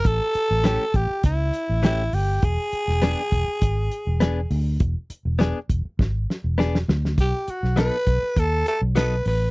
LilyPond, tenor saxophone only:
\new Staff \with { instrumentName = "Tenor saxophone" } { \time 4/4 \key e \mixolydian \tempo 4 = 101 a'4. g'8 e'4 e'8 g'8 | gis'1 | r1 | g'8 fis'8 b'4 a'8 a'8 b'8 b'8 | }